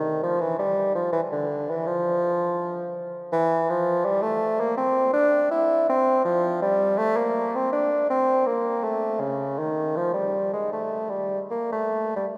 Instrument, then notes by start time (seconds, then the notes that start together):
bassoon
Already playing: D#3
0.23 F3
0.40 E3
0.59 G3
0.95 F3
1.12 E3
1.32 D3
1.70 E3
1.87 F3
3.32 E3
3.70 F3
4.05 G3
4.22 A3
4.60 A#3
4.77 C4
5.13 D4
5.51 E4
5.89 C4
6.25 F3
6.62 G3
6.98 A3
7.17 A#3
7.55 C4
7.72 D4
8.10 C4
8.46 A#3
8.84 A3
9.20 C#3
9.59 D#3
9.96 F3
10.13 G3
10.53 G#3
10.72 A3
11.09 G3
11.51 A#3
11.72 A3
12.16 G3